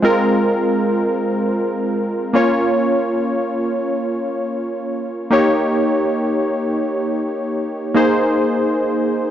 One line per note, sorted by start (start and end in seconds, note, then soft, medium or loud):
0.02 2.30 G#3 medium
0.02 2.30 C4 medium
0.02 2.31 F4 medium
0.02 2.31 A#4 medium
2.33 4.94 A#3 medium
2.33 4.94 C#4 medium
2.33 4.95 F4 medium
2.33 4.95 C#5 medium
5.30 7.91 A#3 medium
5.30 7.91 D#4 medium
5.30 7.92 G4 medium
5.30 7.92 C#5 medium
7.94 9.30 A#3 medium
7.94 9.30 D#4 medium
7.94 9.30 G#4 medium
7.94 9.30 C5 medium